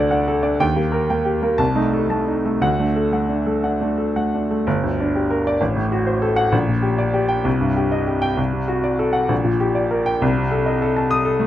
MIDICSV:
0, 0, Header, 1, 2, 480
1, 0, Start_track
1, 0, Key_signature, -2, "minor"
1, 0, Tempo, 655738
1, 439, Time_signature, 6, 3, 24, 8
1, 1412, Tempo, 682594
1, 3332, Tempo, 620476
1, 6692, Tempo, 598205
1, 8670, End_track
2, 0, Start_track
2, 0, Title_t, "Grand piano"
2, 0, Program_c, 0, 0
2, 0, Control_c, 0, 64, 127
2, 0, Note_on_c, 0, 38, 72
2, 0, Note_on_c, 0, 62, 60
2, 0, Note_on_c, 0, 69, 66
2, 0, Note_on_c, 0, 74, 61
2, 0, Note_on_c, 0, 78, 84
2, 79, Note_off_c, 0, 62, 0
2, 79, Note_on_c, 0, 62, 54
2, 81, Note_off_c, 0, 78, 0
2, 81, Note_on_c, 0, 78, 60
2, 160, Note_off_c, 0, 74, 0
2, 204, Note_off_c, 0, 69, 0
2, 204, Note_on_c, 0, 69, 61
2, 269, Note_off_c, 0, 62, 0
2, 270, Note_off_c, 0, 78, 0
2, 313, Note_on_c, 0, 62, 50
2, 314, Note_on_c, 0, 74, 64
2, 392, Note_off_c, 0, 69, 0
2, 424, Note_off_c, 0, 38, 0
2, 436, Note_off_c, 0, 62, 0
2, 436, Note_off_c, 0, 74, 0
2, 438, Note_on_c, 0, 39, 69
2, 441, Note_on_c, 0, 79, 84
2, 451, Control_c, 0, 64, 0
2, 555, Note_on_c, 0, 67, 57
2, 556, Note_on_c, 0, 58, 50
2, 581, Control_c, 0, 64, 127
2, 632, Note_off_c, 0, 79, 0
2, 673, Note_on_c, 0, 70, 59
2, 750, Note_off_c, 0, 58, 0
2, 750, Note_off_c, 0, 67, 0
2, 805, Note_on_c, 0, 58, 52
2, 805, Note_on_c, 0, 79, 59
2, 870, Note_off_c, 0, 70, 0
2, 916, Note_on_c, 0, 67, 57
2, 998, Note_off_c, 0, 58, 0
2, 998, Note_off_c, 0, 79, 0
2, 1043, Note_on_c, 0, 70, 53
2, 1044, Note_on_c, 0, 58, 47
2, 1115, Note_off_c, 0, 67, 0
2, 1145, Note_off_c, 0, 39, 0
2, 1157, Note_on_c, 0, 81, 76
2, 1159, Note_on_c, 0, 36, 67
2, 1167, Note_off_c, 0, 58, 0
2, 1167, Note_off_c, 0, 70, 0
2, 1183, Control_c, 0, 64, 0
2, 1285, Note_on_c, 0, 63, 62
2, 1286, Note_on_c, 0, 57, 58
2, 1308, Control_c, 0, 64, 127
2, 1358, Note_off_c, 0, 81, 0
2, 1414, Note_on_c, 0, 69, 61
2, 1480, Note_off_c, 0, 63, 0
2, 1481, Note_off_c, 0, 57, 0
2, 1531, Note_on_c, 0, 57, 49
2, 1533, Note_on_c, 0, 81, 55
2, 1602, Note_off_c, 0, 69, 0
2, 1660, Note_on_c, 0, 63, 47
2, 1722, Note_off_c, 0, 57, 0
2, 1722, Note_off_c, 0, 81, 0
2, 1779, Note_on_c, 0, 69, 47
2, 1782, Note_on_c, 0, 57, 47
2, 1848, Note_off_c, 0, 63, 0
2, 1866, Note_off_c, 0, 36, 0
2, 1894, Note_on_c, 0, 38, 62
2, 1896, Note_off_c, 0, 69, 0
2, 1897, Note_on_c, 0, 78, 74
2, 1898, Note_off_c, 0, 57, 0
2, 1906, Control_c, 0, 64, 0
2, 2018, Note_on_c, 0, 62, 43
2, 2020, Note_on_c, 0, 57, 49
2, 2047, Control_c, 0, 64, 127
2, 2088, Note_off_c, 0, 78, 0
2, 2137, Note_on_c, 0, 69, 57
2, 2207, Note_off_c, 0, 62, 0
2, 2208, Note_off_c, 0, 57, 0
2, 2253, Note_on_c, 0, 57, 46
2, 2256, Note_on_c, 0, 78, 53
2, 2325, Note_off_c, 0, 69, 0
2, 2369, Note_on_c, 0, 62, 52
2, 2441, Note_off_c, 0, 57, 0
2, 2442, Note_off_c, 0, 78, 0
2, 2491, Note_on_c, 0, 57, 44
2, 2492, Note_on_c, 0, 69, 47
2, 2558, Note_off_c, 0, 62, 0
2, 2611, Note_on_c, 0, 62, 45
2, 2614, Note_on_c, 0, 78, 52
2, 2679, Note_off_c, 0, 57, 0
2, 2679, Note_off_c, 0, 69, 0
2, 2724, Note_off_c, 0, 62, 0
2, 2732, Note_on_c, 0, 57, 48
2, 2735, Note_on_c, 0, 62, 52
2, 2802, Note_off_c, 0, 78, 0
2, 2852, Note_on_c, 0, 69, 56
2, 2924, Note_off_c, 0, 57, 0
2, 2925, Note_off_c, 0, 62, 0
2, 2980, Note_on_c, 0, 57, 45
2, 2982, Note_on_c, 0, 78, 53
2, 3046, Note_off_c, 0, 69, 0
2, 3111, Note_on_c, 0, 62, 47
2, 3172, Note_off_c, 0, 57, 0
2, 3173, Note_off_c, 0, 78, 0
2, 3225, Note_on_c, 0, 69, 45
2, 3228, Note_on_c, 0, 57, 48
2, 3294, Note_off_c, 0, 62, 0
2, 3304, Note_off_c, 0, 38, 0
2, 3337, Note_off_c, 0, 69, 0
2, 3338, Note_off_c, 0, 57, 0
2, 3340, Note_on_c, 0, 31, 77
2, 3346, Control_c, 0, 64, 0
2, 3467, Note_on_c, 0, 38, 53
2, 3481, Control_c, 0, 64, 127
2, 3597, Note_on_c, 0, 62, 58
2, 3657, Note_off_c, 0, 38, 0
2, 3715, Note_on_c, 0, 67, 52
2, 3782, Note_off_c, 0, 62, 0
2, 3831, Note_on_c, 0, 70, 56
2, 3900, Note_off_c, 0, 67, 0
2, 3959, Note_on_c, 0, 74, 70
2, 4017, Note_off_c, 0, 70, 0
2, 4043, Note_off_c, 0, 31, 0
2, 4066, Note_on_c, 0, 33, 72
2, 4069, Note_off_c, 0, 74, 0
2, 4072, Control_c, 0, 64, 0
2, 4185, Note_on_c, 0, 45, 61
2, 4192, Control_c, 0, 64, 127
2, 4306, Note_on_c, 0, 66, 57
2, 4370, Note_off_c, 0, 45, 0
2, 4422, Note_on_c, 0, 72, 55
2, 4490, Note_off_c, 0, 66, 0
2, 4539, Note_on_c, 0, 69, 63
2, 4608, Note_off_c, 0, 72, 0
2, 4651, Note_on_c, 0, 78, 81
2, 4728, Note_off_c, 0, 69, 0
2, 4754, Note_off_c, 0, 33, 0
2, 4772, Note_off_c, 0, 78, 0
2, 4772, Note_on_c, 0, 34, 74
2, 4787, Control_c, 0, 64, 0
2, 4896, Note_on_c, 0, 46, 47
2, 4920, Control_c, 0, 64, 127
2, 5005, Note_on_c, 0, 67, 58
2, 5091, Note_off_c, 0, 46, 0
2, 5131, Note_on_c, 0, 74, 58
2, 5206, Note_off_c, 0, 67, 0
2, 5249, Note_on_c, 0, 67, 66
2, 5328, Note_off_c, 0, 74, 0
2, 5364, Note_on_c, 0, 79, 71
2, 5446, Note_off_c, 0, 67, 0
2, 5477, Note_off_c, 0, 34, 0
2, 5487, Note_on_c, 0, 36, 71
2, 5491, Note_off_c, 0, 79, 0
2, 5513, Control_c, 0, 64, 0
2, 5612, Note_on_c, 0, 43, 57
2, 5660, Control_c, 0, 64, 127
2, 5734, Note_on_c, 0, 67, 61
2, 5806, Note_off_c, 0, 43, 0
2, 5852, Note_on_c, 0, 75, 58
2, 5927, Note_off_c, 0, 67, 0
2, 5971, Note_on_c, 0, 67, 60
2, 6045, Note_off_c, 0, 75, 0
2, 6084, Note_on_c, 0, 79, 81
2, 6163, Note_off_c, 0, 67, 0
2, 6185, Note_off_c, 0, 36, 0
2, 6202, Note_on_c, 0, 36, 72
2, 6208, Note_off_c, 0, 79, 0
2, 6227, Control_c, 0, 64, 0
2, 6326, Note_on_c, 0, 48, 49
2, 6373, Control_c, 0, 64, 127
2, 6442, Note_on_c, 0, 66, 58
2, 6520, Note_off_c, 0, 48, 0
2, 6563, Note_on_c, 0, 74, 57
2, 6638, Note_off_c, 0, 66, 0
2, 6683, Note_on_c, 0, 69, 64
2, 6762, Note_off_c, 0, 74, 0
2, 6792, Note_on_c, 0, 78, 68
2, 6885, Note_off_c, 0, 69, 0
2, 6910, Note_off_c, 0, 36, 0
2, 6919, Note_on_c, 0, 34, 67
2, 6926, Note_off_c, 0, 78, 0
2, 6953, Control_c, 0, 64, 0
2, 7047, Note_on_c, 0, 46, 57
2, 7082, Control_c, 0, 64, 127
2, 7171, Note_on_c, 0, 67, 66
2, 7246, Note_off_c, 0, 46, 0
2, 7292, Note_on_c, 0, 74, 54
2, 7369, Note_off_c, 0, 67, 0
2, 7418, Note_on_c, 0, 70, 59
2, 7490, Note_off_c, 0, 74, 0
2, 7540, Note_on_c, 0, 79, 77
2, 7614, Note_off_c, 0, 70, 0
2, 7633, Note_off_c, 0, 34, 0
2, 7663, Note_off_c, 0, 79, 0
2, 7666, Note_on_c, 0, 36, 82
2, 7679, Control_c, 0, 64, 0
2, 7783, Note_on_c, 0, 48, 56
2, 7827, Control_c, 0, 64, 127
2, 7904, Note_on_c, 0, 69, 59
2, 7977, Note_off_c, 0, 48, 0
2, 8022, Note_on_c, 0, 75, 57
2, 8096, Note_off_c, 0, 69, 0
2, 8150, Note_on_c, 0, 69, 70
2, 8214, Note_off_c, 0, 75, 0
2, 8266, Note_on_c, 0, 81, 56
2, 8335, Note_off_c, 0, 69, 0
2, 8380, Note_on_c, 0, 87, 89
2, 8451, Note_off_c, 0, 81, 0
2, 8495, Note_on_c, 0, 69, 67
2, 8566, Note_off_c, 0, 87, 0
2, 8612, Note_on_c, 0, 57, 65
2, 8670, Note_off_c, 0, 36, 0
2, 8670, Note_off_c, 0, 57, 0
2, 8670, Note_off_c, 0, 69, 0
2, 8670, End_track
0, 0, End_of_file